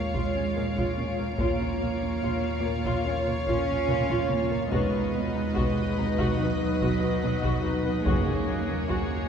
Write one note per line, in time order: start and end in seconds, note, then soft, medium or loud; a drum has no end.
0.00 1.35 D#2 medium
0.00 1.39 G#3 medium
0.00 1.36 F4 medium
0.00 1.35 C#5 soft
0.00 1.35 C#5 medium
0.00 4.27 C#5 soft
0.00 1.35 F5 medium
0.00 1.36 F5 medium
0.00 4.28 D7 soft
0.14 0.22 A#1 medium
0.14 0.40 A#2 soft
0.14 0.34 F4 medium
0.14 taiko medium
0.35 0.43 A#1 soft
0.35 0.44 C#4 soft
0.56 0.64 A#1 soft
0.56 0.81 A#2 medium
0.56 0.65 A#3 medium
0.76 0.85 A#1 medium
0.76 0.96 F4 medium
0.76 taiko medium
0.98 1.06 A#1 soft
0.98 1.23 A#2 soft
0.98 1.06 C#4 soft
1.19 1.27 A#1 soft
1.19 1.27 A#3 medium
1.37 1.47 A#1 medium
1.37 4.69 D#2 medium
1.37 1.64 A#2 medium
1.37 3.03 A#3 medium
1.37 4.68 F4 medium
1.37 1.70 F4 medium
1.37 1.59 F4 medium
1.37 4.67 C#5 medium
1.37 4.68 C#5 medium
1.37 1.70 C#5 medium
1.37 4.68 F5 medium
1.37 taiko medium
1.61 1.69 A#1 soft
1.61 1.69 C#4 soft
1.80 1.89 A#1 soft
1.80 2.06 A#3 soft
1.80 1.90 A#3 soft
2.02 2.10 A#1 soft
2.02 2.10 C#4 soft
2.22 2.31 A#1 medium
2.22 2.48 A#2 soft
2.22 2.42 F4 medium
2.22 taiko medium
2.64 2.72 A#1 soft
2.64 2.90 A#2 medium
2.64 2.73 A#3 soft
2.85 2.93 A#1 medium
2.85 3.05 F4 medium
2.85 taiko medium
3.06 3.14 A#1 soft
3.06 3.32 A#3 medium
3.06 3.15 C#4 medium
3.06 3.37 F4 medium
3.06 3.37 C#5 medium
3.27 3.35 A#1 soft
3.27 3.35 A#3 medium
3.47 3.56 A#1 medium
3.47 3.73 A#2 soft
3.47 4.27 C#4 medium
3.47 3.67 F4 medium
3.47 taiko medium
3.69 3.77 A#1 medium
3.69 3.77 C#4 medium
3.88 3.98 A#1 medium
3.88 4.14 A#2 medium
3.88 3.97 A#3 medium
3.88 6.40 F4 soft
3.88 6.40 F5 medium
3.88 taiko mid medium
4.09 4.19 A#1 medium
4.09 4.29 F4 medium
4.09 taiko high medium
4.30 4.39 A#1 soft
4.30 4.56 A#2 medium
4.30 4.72 A#3 medium
4.30 4.38 C#4 medium
4.30 taiko mid medium
4.50 4.60 A#1 soft
4.50 4.58 A#3 medium
4.50 taiko low medium
4.71 4.81 B1 medium
4.71 8.02 D#2 medium
4.71 4.98 B2 medium
4.71 6.36 G#3 medium
4.71 5.04 D#4 medium
4.71 8.06 D#4 medium
4.71 4.91 F#4 medium
4.71 8.02 B4 medium
4.71 5.03 B4 medium
4.71 8.06 B4 medium
4.71 8.01 D#5 medium
4.71 8.06 D#5 medium
4.71 9.29 D#6 soft
4.71 9.29 F#6 soft
4.71 taiko medium
4.93 5.02 B1 soft
4.93 5.01 D#4 soft
5.13 5.23 B1 medium
5.13 5.21 B3 soft
5.13 5.40 B3 medium
5.34 5.44 B1 medium
5.34 5.42 D#4 soft
5.55 5.65 B1 medium
5.55 5.82 B2 medium
5.55 5.75 F#4 medium
5.55 taiko medium
5.96 6.06 B1 medium
5.96 6.22 B2 medium
5.96 6.04 B3 soft
5.96 9.29 A#5 soft
6.18 6.27 B1 medium
6.18 6.38 F#4 medium
6.18 taiko medium
6.38 6.48 B1 medium
6.38 8.06 F#3 medium
6.38 6.65 B3 medium
6.38 6.47 D#4 soft
6.38 6.70 D#4 medium
6.38 6.70 B4 medium
6.38 9.29 A#6 soft
6.60 6.69 B1 medium
6.60 6.68 B3 medium
6.81 6.90 B1 medium
6.81 7.07 B2 medium
6.81 7.01 F#4 medium
6.81 taiko medium
7.01 7.10 B1 medium
7.01 7.09 D#4 medium
7.22 7.31 B1 medium
7.22 7.49 B2 medium
7.22 7.30 B3 medium
7.42 7.52 B1 medium
7.42 7.62 F#4 medium
7.42 taiko medium
7.64 7.73 B1 medium
7.64 7.90 B2 medium
7.64 7.72 D#4 medium
7.84 7.93 B1 medium
7.84 7.92 B3 medium
8.05 8.14 F#1 medium
8.05 9.29 D#2 medium
8.05 8.31 F#2 medium
8.05 9.29 A#3 medium
8.05 9.29 F#4 medium
8.05 8.25 F#4 medium
8.05 8.37 G#4 medium
8.05 9.29 G#4 medium
8.05 8.37 C#5 medium
8.05 9.29 C#5 medium
8.05 taiko medium
8.27 8.35 F#1 medium
8.27 8.36 C#4 soft
8.48 8.56 F#1 medium
8.48 8.73 F#3 soft
8.48 8.56 A#3 soft
8.68 8.77 F#1 medium
8.68 8.76 C#4 soft
8.88 8.98 F#1 medium
8.88 9.14 F#2 soft
8.88 9.08 F#4 medium
8.88 taiko medium